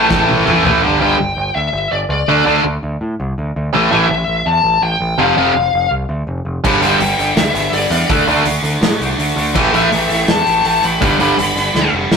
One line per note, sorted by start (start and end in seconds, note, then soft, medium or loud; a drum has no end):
0.00 0.28 A5 medium
0.10 0.27 A1 medium
0.10 0.45 A2 medium
0.10 0.45 E3 loud
0.10 0.46 A3 loud
0.10 kick loud
0.10 snare medium
0.28 0.45 A1 medium
0.28 high tom medium
0.46 0.63 A1 medium
0.46 0.62 A2 medium
0.46 0.62 E3 medium
0.46 0.63 A3 loud
0.46 mid tom medium
0.63 0.81 A1 loud
0.63 0.81 A2 medium
0.63 0.81 E3 loud
0.63 0.82 A3 loud
0.63 floor tom medium
0.82 0.96 G1 medium
0.82 0.97 G2 loud
0.82 0.98 D3 loud
0.82 0.98 G3 loud
1.00 1.14 G1 medium
1.00 1.15 G2 medium
1.00 1.16 D3 loud
1.00 1.16 G3 medium
1.00 1.52 G5 loud
1.19 1.32 G1 medium
1.37 1.50 G1 medium
1.55 1.68 D2 medium
1.55 1.92 E5 medium
1.73 1.86 G1 medium
1.91 2.04 G1 medium
1.91 1.97 D5 medium
2.09 2.22 C#2 medium
2.09 2.44 D5 medium
2.28 2.41 D2 medium
2.28 2.43 D3 medium
2.28 2.43 A3 medium
2.28 2.44 D4 loud
2.46 2.59 D2 medium
2.46 2.61 D3 medium
2.46 2.62 A3 medium
2.46 2.62 D4 loud
2.64 2.77 D2 loud
2.83 2.96 D2 medium
3.01 3.14 A2 medium
3.20 3.32 C2 medium
3.38 3.51 D2 medium
3.56 3.69 D2 medium
3.74 3.87 A1 medium
3.74 3.89 A2 medium
3.74 3.89 E3 loud
3.74 3.89 A3 loud
3.91 4.05 A1 loud
3.91 4.06 A2 medium
3.91 4.07 E3 medium
3.91 4.07 A3 medium
3.91 4.48 E5 medium
4.10 4.23 A1 loud
4.28 4.41 A1 medium
4.46 4.59 E2 medium
4.46 4.83 A5 medium
4.63 4.77 A1 medium
4.82 4.95 A1 medium
4.82 5.17 G5 medium
5.00 5.13 A1 medium
5.18 5.31 F1 loud
5.18 5.34 F2 medium
5.18 5.34 C3 loud
5.18 5.34 F3 medium
5.18 5.88 F5 medium
5.37 5.50 F1 medium
5.37 5.52 F2 medium
5.37 5.52 C3 loud
5.37 5.52 F3 loud
5.55 5.68 F1 medium
5.74 5.86 F1 medium
5.91 6.04 C2 medium
6.09 6.22 D2 medium
6.27 6.40 F1 medium
6.45 6.58 F1 medium
6.64 6.77 G1 loud
6.64 6.82 G2 medium
6.64 6.82 D3 loud
6.64 6.82 G3 loud
6.64 kick loud
6.64 crash medium
6.80 6.94 G1 medium
6.80 6.98 G2 medium
6.80 6.99 D3 medium
6.80 7.00 G3 medium
6.80 7.39 G5 loud
6.80 open hi-hat medium
7.00 7.13 G1 medium
7.00 7.17 G2 medium
7.00 7.18 D3 medium
7.00 7.18 G3 loud
7.00 open hi-hat medium
7.18 7.31 G1 medium
7.18 7.35 G2 medium
7.18 7.36 D3 medium
7.18 7.36 G3 medium
7.18 open hi-hat medium
7.36 7.49 D2 medium
7.36 7.52 G2 loud
7.36 7.53 D3 medium
7.36 7.53 G3 loud
7.36 7.71 E5 loud
7.36 snare loud
7.36 open hi-hat medium
7.54 7.67 G1 loud
7.54 7.72 G2 medium
7.54 7.73 D3 medium
7.54 7.74 G3 medium
7.54 open hi-hat medium
7.72 7.85 G1 medium
7.72 7.89 G2 medium
7.72 7.91 D3 medium
7.72 7.92 G3 loud
7.72 7.91 D5 medium
7.72 open hi-hat medium
7.90 8.04 E2 medium
7.90 8.08 G2 medium
7.90 8.09 D3 medium
7.90 8.09 G3 medium
7.90 8.26 D5 medium
7.90 open hi-hat medium
8.09 8.22 D2 medium
8.09 8.26 D3 medium
8.09 8.28 A3 loud
8.09 8.27 D4 loud
8.09 kick loud
8.09 open hi-hat medium
8.27 8.40 D2 medium
8.27 8.45 D3 medium
8.27 8.46 A3 medium
8.27 8.46 D4 loud
8.27 open hi-hat medium
8.45 8.58 D2 medium
8.45 8.62 D3 loud
8.45 8.63 A3 medium
8.45 8.63 D4 loud
8.45 open hi-hat medium
8.63 8.76 D2 medium
8.63 8.81 D3 medium
8.63 8.82 A3 medium
8.63 8.83 D4 medium
8.63 open hi-hat medium
8.81 8.95 A2 medium
8.81 8.99 D3 medium
8.81 9.00 A3 loud
8.81 9.01 D4 loud
8.81 snare loud
8.81 open hi-hat medium
9.00 9.13 C2 medium
9.00 9.17 D3 medium
9.00 9.17 A3 medium
9.00 9.18 D4 medium
9.00 open hi-hat medium
9.18 9.31 D2 medium
9.18 9.36 D3 medium
9.18 9.37 A3 medium
9.18 9.37 D4 loud
9.18 open hi-hat medium
9.36 9.57 D2 medium
9.36 9.54 D3 medium
9.36 9.55 A3 medium
9.36 9.55 D4 loud
9.36 open hi-hat medium
9.55 9.68 A1 medium
9.55 9.72 A2 medium
9.55 9.73 E3 medium
9.55 9.73 A3 loud
9.55 kick loud
9.55 crash loud
9.72 9.86 A1 medium
9.72 9.91 A2 medium
9.72 9.91 E3 loud
9.72 9.92 A3 medium
9.72 10.31 E5 medium
9.72 open hi-hat medium
9.91 10.04 A1 medium
9.91 10.10 A2 loud
9.91 10.10 E3 loud
9.91 10.10 A3 loud
9.91 open hi-hat medium
10.10 10.23 A1 medium
10.10 10.28 A2 medium
10.10 10.28 E3 loud
10.10 10.29 A3 loud
10.10 open hi-hat medium
10.28 10.41 E2 medium
10.28 10.46 A2 loud
10.28 10.47 E3 medium
10.28 10.47 A3 loud
10.28 10.65 A5 medium
10.28 snare loud
10.28 open hi-hat medium
10.47 10.60 A1 medium
10.47 10.64 A2 medium
10.47 10.64 E3 medium
10.47 10.65 A3 medium
10.47 open hi-hat medium
10.65 10.78 A1 medium
10.65 10.81 A2 medium
10.65 10.82 E3 medium
10.65 10.82 A3 loud
10.65 10.83 A5 medium
10.65 open hi-hat medium
10.82 10.96 A1 medium
10.82 11.00 A2 medium
10.82 11.00 E3 medium
10.82 11.00 A3 loud
10.82 11.89 B5 medium
10.82 open hi-hat medium
11.02 11.15 G1 loud
11.02 11.19 G2 medium
11.02 11.20 D3 medium
11.02 11.20 G3 loud
11.02 kick loud
11.02 open hi-hat medium
11.20 11.32 G1 medium
11.20 11.37 G2 medium
11.20 11.38 D3 medium
11.20 11.39 G3 medium
11.20 open hi-hat medium
11.38 11.51 G1 medium
11.38 11.55 G2 medium
11.38 11.56 D3 medium
11.38 11.57 G3 loud
11.38 open hi-hat medium
11.55 11.68 G1 medium
11.55 11.73 G2 medium
11.55 11.74 D3 medium
11.55 11.75 G3 medium
11.55 open hi-hat medium
11.74 11.87 D2 medium
11.74 11.91 G2 medium
11.74 11.92 D3 medium
11.74 11.93 G3 loud
11.74 snare medium
11.93 12.06 F1 medium
11.93 12.10 G2 medium
11.93 12.11 D3 medium
11.93 12.11 G3 medium
12.11 12.17 G1 medium
12.11 12.17 G2 medium
12.11 12.17 D3 medium
12.11 12.17 G3 loud
12.11 snare medium